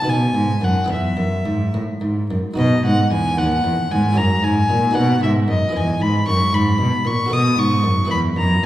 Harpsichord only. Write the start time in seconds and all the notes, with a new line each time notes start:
0.02 D#4 F#4 B4
0.06 B2
0.35 G#2
0.61 F#2
0.84 E4 G#4 B4
0.89 E2
1.17 F#2
1.46 G#2
1.74 A2
2.01 G#2
2.31 F#2
2.54 D#4 F#4 B4
2.59 B2
2.86 G#2
3.12 E2
3.37 D#2
3.64 E2
3.92 G#2
4.13 E4 F#4 C#5
4.17 F#2
4.43 G#2
4.70 A#2
4.91 D#4 F#4 B4
4.96 B2
5.21 G#2
5.48 F#2
5.69 E4 G#4 B4
5.74 E2
6.00 G#2
6.27 F#2
6.53 G#2
6.78 B2
7.05 A#2
7.26 F#4 A4 B4
7.31 B2
7.57 G#2
7.84 F#2
8.05 E4 G#4 B4
8.10 E2
8.36 F#2